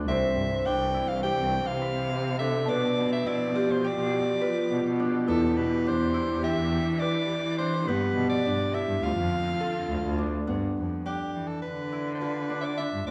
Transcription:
Already playing: B3 D4 F4 A4 G5
0.06 C2 C3 E3 C4 E5
0.10 C4 C5
0.36 G2
0.66 C2 D4 G5
0.94 E4
1.08 C2 F5
1.23 G4 G5
1.38 C2
1.66 C3 F5
1.82 B5
2.38 D4 A4 E5
2.66 B2 F3 D4 G4 B4 D5 A5
2.97 B2
3.12 E5
3.25 B2 E4 D5
3.55 F4 G4
3.69 B2 C5
3.84 G4 D5
3.99 B2
4.41 F4 B4
4.71 B2
4.85 B2
5.00 D4
5.27 E2 E3 B3 D4 E4 A4
5.57 B2 B4
5.86 E2 D4 C5
6.14 E4
6.30 E2
6.43 G4 E5
6.59 E2
6.87 E3
6.99 B4 D5 D6
7.58 D4 C5
7.88 G2 F3 B3 G4 B4
8.16 B2
8.29 D5
8.45 G2 D4
8.74 E4 E5
8.88 G2
9.02 D2 D3 C4 F4 F5
9.17 F2
9.61 A4
9.89 D2
10.03 D2
10.18 D4
10.47 G2 B3 D4
10.77 F2
11.06 D4 G4
11.35 E3
11.47 A4
11.62 D3 B4
11.92 E4
12.14 C5
12.18 F4 B4
12.50 D4
12.61 D5 E5
12.77 D4 E5
12.94 G2
13.07 D2 D5

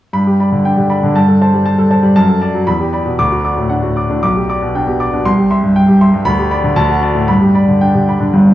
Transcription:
0.13 G2 B5
0.27 G4
0.40 D5 B5
0.52 D3
0.65 D4 G5
0.77 D3 G4
0.90 D5 B5
1.03 D3 D4
1.15 G2 A5
1.28 A4
1.41 C5 A5
1.54 G3
1.66 A5
1.78 G3 A4
1.91 C5 A5
2.03 G3
2.16 F#2 A5
2.29 A4
2.41 D5 A5
2.55 F#3
2.67 E2 B5
2.80 G4
2.93 D5 B5
3.06 B2
3.19 D2 D6
3.32 F#4
3.44 D5 D6
3.57 A2
3.69 D4 F#5
3.83 A2 F#4
3.96 D5 D6
4.09 A2 D4
4.23 B1 D6
4.36 G4
4.49 D5 D6
4.62 B2
4.75 D4 G5
4.87 B2 G4
5.00 D5 D6
5.13 B2 D4
5.25 C2 C6
5.37 G4
5.51 E5 C6
5.63 G2
5.76 G5
5.88 G2 G4
6.01 E5 C6
6.14 G2
6.25 D2 B5
6.39 G4
6.51 D5 B5
6.64 D3
6.76 D2 A5
6.89 F#4
7.02 D5 A5
7.15 A2
7.28 G2 B5
7.41 G4
7.54 D5 B5
7.68 D3
7.81 D4 G5
7.95 D3 G4
8.08 D5 B5
8.20 D3 D4
8.33 G1 G2
8.47 D4

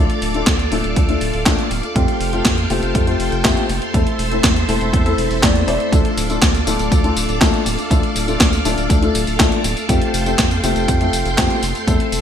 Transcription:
Already playing: A3 D4 F4 A4 D5 F5 D6
0.10 closed hi-hat
0.22 D1, open hi-hat
0.34 A3 D4 F4 A4, closed hi-hat
0.47 D2, kick, snare, clap, closed hi-hat
0.59 closed hi-hat
0.72 D1 A3 D4 F4 A4, open hi-hat
0.84 D1, closed hi-hat
0.96 D2, kick, closed hi-hat
1.09 A3 D4 F4 A4, closed hi-hat
1.21 D1, open hi-hat
1.34 D1, open hi-hat
1.46 D2 A3 D4 F4 A4, kick, snare, clap, closed hi-hat
1.59 closed hi-hat
1.71 D1, open hi-hat
1.83 closed hi-hat
1.96 F2 A3 C4 F4 G4 A4 G5 C6, kick, closed hi-hat
2.08 closed hi-hat
2.20 F1, open hi-hat
2.33 A3 C4 F4 G4, closed hi-hat
2.45 F2, kick, snare, clap, closed hi-hat
2.58 closed hi-hat
2.70 F1 A3 C4 F4 G4, open hi-hat
2.82 F1, closed hi-hat
2.95 F2, kick, closed hi-hat
3.07 A3 C4 F4 G4, closed hi-hat
3.20 F1, open hi-hat
3.32 F1, closed hi-hat
3.44 F2 A3 C4 F4 G4, kick, snare, clap, closed hi-hat
3.57 closed hi-hat
3.69 F1, open hi-hat
3.82 closed hi-hat
3.94 E2 A3 C4 E4 A4 C5 E5, kick, closed hi-hat
4.07 closed hi-hat
4.19 E1, open hi-hat
4.31 A3 C4 E4 A4, closed hi-hat
4.44 E2, kick, snare, clap, closed hi-hat
4.56 closed hi-hat
4.69 E1 A3 C4 E4 A4, open hi-hat
4.81 E1, closed hi-hat
4.93 E2, kick, closed hi-hat
5.06 A3 C4 E4 A4, closed hi-hat
5.18 E1, open hi-hat
5.30 E1, open hi-hat
5.43 E2 A3 C4 E4 D5, kick, snare, clap, closed hi-hat
5.56 closed hi-hat
5.68 E1 A3 C4 E4 D5, open hi-hat
5.80 closed hi-hat
5.92 D2 A3 D4 F4 A4 D5 F5 D6, kick, closed hi-hat, tambourine
6.05 closed hi-hat
6.17 D1, open hi-hat, tambourine
6.30 A3 D4 F4 A4, closed hi-hat, tambourine
6.42 D2, kick, snare, clap, closed hi-hat, tambourine
6.55 closed hi-hat, tambourine
6.67 D1 A3 D4 F4 A4, open hi-hat, tambourine
6.79 D1, closed hi-hat, tambourine
6.92 D2, kick, closed hi-hat, tambourine
7.04 A3 D4 F4 A4, closed hi-hat
7.16 D1, open hi-hat, tambourine
7.29 D1, closed hi-hat, tambourine
7.41 D2 A3 D4 F4 A4, kick, snare, clap, closed hi-hat, tambourine
7.54 closed hi-hat
7.66 D1, open hi-hat, tambourine
7.79 closed hi-hat, tambourine
7.91 D2 A3 D4 F4 A4, kick, closed hi-hat, tambourine
8.03 closed hi-hat
8.16 D1, open hi-hat, tambourine
8.28 A3 D4 F4 A4, closed hi-hat, tambourine
8.40 D2, kick, snare, clap, closed hi-hat, tambourine
8.53 closed hi-hat, tambourine
8.65 D1 A3 D4 F4 A4, open hi-hat, tambourine
8.77 D1, closed hi-hat, tambourine
8.90 D2, kick, closed hi-hat, tambourine
9.02 A3 D4 F4 A4, closed hi-hat
9.15 D1, open hi-hat, tambourine
9.27 D1, open hi-hat, tambourine
9.39 D2 A3 D4 F4 A4, kick, snare, clap, closed hi-hat, tambourine
9.52 closed hi-hat
9.64 D1, open hi-hat, tambourine
9.77 closed hi-hat, tambourine
9.89 F2 A3 C4 F4 G4 G5 C6, kick, closed hi-hat, tambourine
10.02 closed hi-hat
10.14 F1, open hi-hat, tambourine
10.26 A3 C4 F4 G4, closed hi-hat, tambourine
10.39 F2, kick, snare, clap, closed hi-hat, tambourine
10.51 closed hi-hat, tambourine
10.63 F1 A3 C4 F4 G4, open hi-hat, tambourine
10.76 F1, closed hi-hat, tambourine
10.88 F2, kick, closed hi-hat, tambourine
11.01 A3 C4 F4 G4, closed hi-hat
11.13 F1, open hi-hat, tambourine
11.26 F1, closed hi-hat, tambourine
11.38 F2 A3 C4 F4 G4, kick, snare, clap, closed hi-hat, tambourine
11.50 closed hi-hat
11.63 F1, open hi-hat, tambourine
11.75 closed hi-hat, tambourine
11.87 E2 A3 C4 E4 A4 C5 E5, kick, closed hi-hat, tambourine
12.00 closed hi-hat
12.12 E1, open hi-hat, tambourine

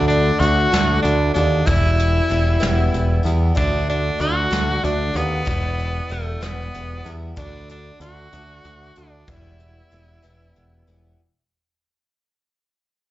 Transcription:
Already playing: D2 D3 A3 D4 F#4
0.08 D4, closed hi-hat
0.39 D2 D3 A3 D4 F#4, closed hi-hat
0.72 D2 D3 A3 D4 F#4, snare, closed hi-hat
1.02 D2 D4, closed hi-hat
1.34 D#2 A3 D4 F#4, closed hi-hat
1.66 E1 E2 B2 E3 G3 B3 E4, kick, closed hi-hat
1.99 closed hi-hat
2.28 E1 E3 G3 B3 E4, closed hi-hat
2.60 E1 E2 B2 E3 G3 B3 E4, snare, closed hi-hat
2.93 E1, closed hi-hat
3.23 E2 E3 G3 B3 E4, closed hi-hat
3.55 D2 D3 A3 D4 F#4, kick, closed hi-hat
3.89 D4, closed hi-hat
4.19 D2 D3 A3 D4 F#4, closed hi-hat
4.51 D2 D3 A3 D4 F#4, snare, closed hi-hat
4.84 D2 D4, closed hi-hat
5.14 D#2 A3 B3 D4 F#4, closed hi-hat
5.45 E1 E2 B2 E3 G3 B3 E4, kick, closed hi-hat
5.79 closed hi-hat
6.09 E1 E3 G3 A3 B3 E4, closed hi-hat
6.41 E1 E2 B2 E3 G3 B3 E4, snare, closed hi-hat
6.74 E1, closed hi-hat
7.04 E2 E3 G3 B3 E4, closed hi-hat
7.36 D2 D3 A3 D4 F#4, kick, closed hi-hat
7.69 D4, closed hi-hat
8.00 D2 D3 A3 D4 F#4, closed hi-hat
8.32 D2 D3 A3 D4 F#4, closed hi-hat
8.64 D2, closed hi-hat
8.95 D2 A3 D4 F#4, closed hi-hat
9.27 E1 E2 B2 E3 G3 B3 E4, kick, closed hi-hat
9.60 closed hi-hat
9.91 E1 E3 G3 B3 E4, closed hi-hat
10.23 E1 E2 B2 E3 G3 B3 E4, closed hi-hat
10.56 E1, closed hi-hat
10.87 E1 E3 G3 B3 E4, closed hi-hat

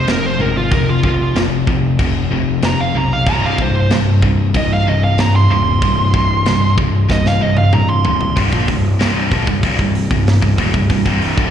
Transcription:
0.07 F1 F2 C3 A#4, snare, crash
0.26 C5
0.39 G#1 F2 C3 A#4
0.57 F4
0.71 F1 F2 C3 A#4, kick, crash
0.90 F4
1.03 F1 F2 C3 F4, kick
1.35 F1 F2 C3, snare, crash
1.67 F1 F2 C3, kick
1.99 F1 F2 C3, kick, crash
2.31 F1 F2 C3
2.62 F1 F2 C3 A#5, snare, crash
2.80 F5
2.94 B1 F2 C3 A#5
3.13 F5
3.26 C1 C2 G2 C3 A#5, kick, crash
3.46 F5
3.58 C1 C2 G2 C5, kick
3.90 C1 C2 G2, snare, crash
4.22 C2 G2, kick
4.54 C1 C2 G2 D#5, kick, crash
4.73 F5
4.86 C1 C2 G2 D#5
5.04 F5
5.17 C1 C2 G2 A#5, snare, crash
5.36 C6
5.49 D#1 C2 G2 C6
5.82 C1 C2 G2, kick, crash
6.14 C1 C2 G2, kick
6.45 C1 C2 G2, snare, crash
6.77 C1 C2 G2, kick
7.08 C1 C2 G2 D#5, kick, snare
7.26 F5, snare
7.41 C1 C2 G2 D#5
7.57 F5, high tom
7.73 C1 C2 G2 A#5, mid tom
7.90 C6
8.04 C1 C2 G2 C6, floor tom
8.21 floor tom
8.36 C1 C2 G2, kick, open hi-hat
8.51 A#1 A#2 F3, kick
8.67 C1 C2 G2, kick, open hi-hat
8.99 C1 C2 G2 C3, snare, open hi-hat
9.31 A#1 A#2 F3, kick, open hi-hat
9.47 C1 C2 G2, kick
9.63 C1 C2 G2, kick, open hi-hat
9.79 C1 C2 G2, kick
9.95 open hi-hat
10.11 C1 C2 G2, kick
10.27 snare, open hi-hat
10.41 C1 C2 G2, kick
10.58 D1 D2 A2, kick, open hi-hat
10.74 C1 C2 G2, kick
10.90 C1 C2 G2, kick, open hi-hat
11.05 C1 C2 G2 C3, kick
11.22 open hi-hat
11.37 D1 D2 A2 D3, kick

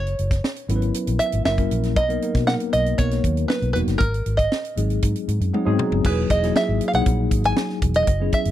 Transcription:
Already playing: F#1 C#5
0.07 closed hi-hat
0.19 F#1, closed hi-hat
0.31 kick, snare, closed hi-hat
0.44 snare
0.56 closed hi-hat
0.69 G#1 F#3 B3 C#4 E4 A#4, closed hi-hat
0.76 B4
0.82 closed hi-hat
0.94 closed hi-hat
1.07 A#1, closed hi-hat
1.19 E5, closed hi-hat
1.32 G#1, closed hi-hat
1.45 F#1 F#3 A#3 C#4 E4 A#4 E5, snare
1.58 F#3 A#3 C#4 E4 A#4, kick, closed hi-hat
1.71 A#1, closed hi-hat
1.83 snare, closed hi-hat
1.96 B1 D#5, kick, closed hi-hat
2.09 F#3 A#3 B3 D#4 A#4, closed hi-hat
2.22 F#3 A#3 B3 D#4 A#4, closed hi-hat
2.35 B2, kick, snare, closed hi-hat
2.47 F#3 A#3 B3 D#4 A#4 F#5, snare
2.60 closed hi-hat
2.73 B1 D#5, closed hi-hat
2.86 closed hi-hat
2.98 B1 F#3 A#3 B3 D#4 A#4 C#5, kick, closed hi-hat
3.11 snare, closed hi-hat
3.24 D#2, kick, closed hi-hat
3.37 closed hi-hat
3.48 B4, snare
3.62 B1, closed hi-hat
3.73 E1 F#3 A#3 B3 D#4 F#4 B4, closed hi-hat
3.87 F#1, snare, closed hi-hat
3.98 G#1 A#4, kick, closed hi-hat
4.14 closed hi-hat
4.26 G#1, closed hi-hat
4.37 D#5, kick, closed hi-hat
4.52 snare
4.65 closed hi-hat
4.76 G#1 F#3 G#3 C4 D#4 G#4, closed hi-hat
4.90 closed hi-hat
5.02 G#2, kick, closed hi-hat
5.16 closed hi-hat
5.28 G#2, closed hi-hat
5.41 F#2, closed hi-hat
5.53 F#3 G#3 C4 D#4 G#4 F#5, high tom
5.65 G#2 F#3 G#3 B3 D#4 G#4
5.72 C4
5.79 A#5, mid tom
5.92 F#1, floor tom
6.04 E1 F#3 A#3 D#4 E4 G#4 B4, kick, crash
6.30 E1 D#5, kick, closed hi-hat
6.43 F#3 A#3 D#4 E4 G#4, snare, closed hi-hat
6.56 E5, snare
6.69 G#1
6.81 closed hi-hat
6.88 F5
6.93 B1 F#3 A#3 D#4 E4 G#4 F#5, closed hi-hat
7.06 A#1, kick, closed hi-hat
7.31 G#1, kick, closed hi-hat
7.44 G#5, closed hi-hat
7.57 snare
7.69 snare
7.82 E1, kick, closed hi-hat
7.94 D#5, closed hi-hat
8.07 F#1, kick, closed hi-hat
8.20 F#3 B3 C#4 E4 G#4
8.32 E5, kick, closed hi-hat
8.45 F#1, closed hi-hat

